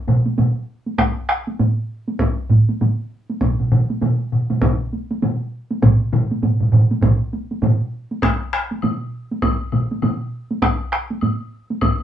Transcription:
0.07 taiko low-mid, taiko high
0.26 taiko high
0.38 taiko low-mid, taiko high
0.86 taiko high
0.98 taiko rim, taiko, taiko high
1.29 taiko rim
1.47 taiko high
1.59 taiko mid, taiko high
2.08 taiko high
2.19 taiko, taiko high
2.50 taiko mid, taiko high
2.69 taiko high
2.81 taiko mid, taiko high
3.30 taiko high
3.41 taiko, taiko low-mid, taiko high
3.60 taiko low-mid
3.72 taiko low-mid
3.90 taiko high
4.01 taiko low-mid, taiko high
4.32 taiko low-mid
4.50 taiko low-mid, taiko high
4.62 taiko, taiko low-mid, taiko high
4.93 taiko high
5.11 taiko high
5.22 taiko low-mid, taiko high
5.71 taiko high
5.82 taiko, taiko low-mid, taiko mid, taiko high
6.13 taiko low-mid, taiko mid
6.31 taiko high
6.42 taiko low-mid, taiko mid, taiko high
6.60 taiko low-mid, taiko mid
6.72 taiko low-mid, taiko mid
6.91 taiko high
7.01 taiko, taiko low-mid, taiko mid, taiko high
7.33 taiko high
7.51 taiko high
7.62 taiko low-mid, taiko mid, taiko high
8.11 taiko high
8.22 taiko rim, taiko, taiko high, high woodblock
8.53 taiko rim
8.71 taiko high
8.82 taiko low-mid, taiko high, high woodblock
9.31 taiko high
9.42 taiko, taiko high, high woodblock
9.72 taiko low-mid, taiko high, high woodblock
9.91 taiko high
10.02 taiko low-mid, taiko high, high woodblock
10.51 taiko high
10.62 taiko rim, taiko, taiko high, high woodblock
10.92 taiko rim
11.10 taiko high
11.21 taiko mid, taiko high, high woodblock
11.70 taiko high
11.81 taiko, taiko high, high woodblock

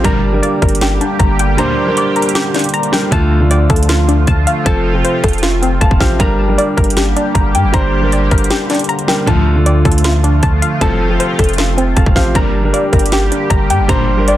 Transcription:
0.04 G1 D2 A#2 D3 G3 A#3 D4 G4 A#4 A#5, kick, closed hi-hat
0.33 G3 D4 A#4
0.43 D5, closed hi-hat
0.62 G1 A#4, kick, closed hi-hat
0.69 closed hi-hat
0.75 closed hi-hat
0.81 G4, snare, closed hi-hat
1.01 D4, closed hi-hat
1.19 G1 A#5, kick, closed hi-hat
1.39 G5, closed hi-hat
1.57 D2 A#2 G3 D4 C5 A#5, closed hi-hat
1.86 G3 D4 A#4
1.97 D5, closed hi-hat
2.16 A#4, closed hi-hat
2.22 closed hi-hat
2.29 closed hi-hat
2.35 G4, snare, closed hi-hat
2.54 D4, snare, closed hi-hat
2.59 closed hi-hat
2.64 closed hi-hat
2.69 closed hi-hat
2.74 A#5, closed hi-hat
2.83 closed hi-hat
2.92 G3 D4 A#4 G5, snare
3.11 D2 D3 F3 A3 F4 A5, kick, closed hi-hat
3.40 D3 A3 F4
3.51 D5, closed hi-hat
3.70 D2 A4, kick, closed hi-hat
3.76 closed hi-hat
3.83 closed hi-hat
3.89 F4, snare, closed hi-hat
4.08 D4, closed hi-hat
4.27 D2 A5, kick, closed hi-hat
4.47 F5, closed hi-hat
4.65 F1 C3 F3 C4 A4 A5, kick, closed hi-hat
4.94 F3 C4 A4
5.04 C5, closed hi-hat
5.24 F1 A4, kick, closed hi-hat
5.28 closed hi-hat
5.33 closed hi-hat
5.38 closed hi-hat
5.43 F4, snare, closed hi-hat
5.62 C4 G5, closed hi-hat
5.81 F1 F5 A5, kick, closed hi-hat
5.91 F1, kick
6.00 A1 F3 C4 G4 C5 F5, kick, snare
6.19 G1 D3 G3 A#3 D4 G4 A#4 A#5, kick, closed hi-hat
6.48 G3 D4 A#4
6.58 D5, closed hi-hat
6.77 G1 A#4, kick, closed hi-hat
6.84 closed hi-hat
6.90 closed hi-hat
6.97 G4, snare, closed hi-hat
7.16 D4, closed hi-hat
7.35 G1 A#5, kick, closed hi-hat
7.54 G2 G5, closed hi-hat
7.64 G1
7.72 G1 G3 D4 C5 A#5, kick, closed hi-hat
8.02 G3 D4 A#4
8.12 D5, closed hi-hat
8.31 G1 A#4, kick, closed hi-hat
8.38 closed hi-hat
8.44 closed hi-hat
8.50 G4, snare, closed hi-hat
8.70 D4, snare, closed hi-hat
8.75 closed hi-hat
8.79 closed hi-hat
8.84 closed hi-hat
8.89 A#5, closed hi-hat
8.99 closed hi-hat
9.07 G3 D4 A#4 G5, snare
9.26 D2 A2 D3 F3 A3 F4 A5, kick, closed hi-hat
9.56 D3 A3 F4
9.66 D5, closed hi-hat
9.85 D2 A4, kick, closed hi-hat
9.92 closed hi-hat
9.98 closed hi-hat
10.04 F4, snare, closed hi-hat
10.24 D4, closed hi-hat
10.43 D2 A5, kick, closed hi-hat
10.62 F5, closed hi-hat
10.80 F1 C2 A2 C3 F3 C4 A4 A5, kick, closed hi-hat
11.09 F3 C4 A4
11.20 C5, closed hi-hat
11.39 F1 A4, kick, closed hi-hat
11.44 closed hi-hat
11.49 closed hi-hat
11.53 closed hi-hat
11.58 F4, snare, closed hi-hat
11.77 C4 G5, closed hi-hat
11.96 F1 F5 A5, kick, closed hi-hat
12.06 F1, kick
12.15 A1 F3 C4 G4 C5 F5, kick, snare
12.34 G1 D2 A#2 D3 G3 A#3 D4 G4 A#4 A#5, kick, closed hi-hat
12.63 G3 D4 A#4
12.73 D5, closed hi-hat
12.92 G1 A#4, kick, closed hi-hat
12.99 closed hi-hat
13.06 closed hi-hat
13.12 G4, snare, closed hi-hat
13.32 D4, closed hi-hat
13.50 G1 A#5, kick, closed hi-hat
13.70 G2 G5, closed hi-hat
13.79 G1
13.88 G1 D2 A#2 G3 D4 C5 A#5, kick, closed hi-hat
14.17 G3 D4 A#4
14.28 D5, closed hi-hat

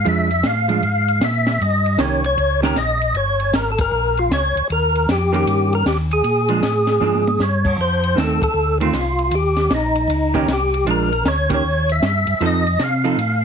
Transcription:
0.05 F2 F3 G#3 D4 E5, ride
0.31 ride
0.43 A2 F5, snare, hi-hat pedal, ride
0.68 F3 G#3 D4, ride
0.83 G#2, ride
1.08 ride
1.21 A#2 E5, snare, hi-hat pedal, ride
1.46 snare, ride
1.60 G2 D#5, ride
1.86 ride
1.98 C2 D#3 A#3 C#4 G4 C#5, snare, hi-hat pedal, ride
2.24 C#5, ride
2.38 C#2, ride
2.62 D#3 A#3 C#4 G4 A#4, snare, ride
2.75 A#1 D#5, snare, hi-hat pedal, ride
3.01 ride
3.14 G1 C#5, ride
3.40 ride
3.53 G#1 A#4, snare, hi-hat pedal, ride
3.72 A4
3.78 A#4, kick, ride
3.92 A#1
4.17 F4, ride
4.30 C#2 C#5, snare, hi-hat pedal, ride
4.55 C#2, ride
4.69 D#2 A#4, ride
4.95 ride
5.08 F2 G4, snare, hi-hat pedal, ride
5.32 D#3 A#3 C#4 G4, ride
5.46 G2, ride
5.73 A#4, ride
5.85 D#2 G4, snare, hi-hat pedal, ride
6.11 G#4, ride
6.24 A#2, ride
6.49 F3 G#3 D4, ride
6.62 A2, snare, hi-hat pedal, ride
6.87 snare, ride
7.00 G#2 F3 G#3 D4, high tom
7.14 high tom
7.27 high tom
7.39 G2 C#5, snare, hi-hat pedal
7.65 kick, crash
7.78 F2 C5
8.03 ride
8.15 D#2 D#3 A3 C4, snare, hi-hat pedal, ride
8.20 A4
8.41 D#2 A4, kick, ride
8.54 D2
8.80 D#3 A3 C4 F4, ride
8.93 C2, snare, hi-hat pedal, ride
9.19 ride
9.31 D#2, ride
9.35 G4
9.56 snare, ride
9.70 A#1, snare, hi-hat pedal, ride
9.75 D#4
9.95 ride
10.08 C#2, ride
10.34 D#3 A#3 C#4 G4, kick, ride
10.47 C2, snare, hi-hat pedal, ride
10.53 G4
10.74 ride
10.85 A#1 F3 G#3 D4, ride
10.91 A#4
11.12 ride
11.24 D2, snare, hi-hat pedal, ride
11.28 C#5
11.49 D#3 A#3 C#4 G4, kick, ride
11.54 C#5
11.63 D#2
11.89 E5, ride
12.02 G2, snare, hi-hat pedal, ride
12.27 G2, ride
12.40 F2 F3 C4 D#4 A4, ride
12.46 D#5
12.67 ride
12.79 C3, snare, hi-hat pedal, ride
12.84 F5
13.04 F3 C4 D#4 A4, ride
13.17 A2, ride

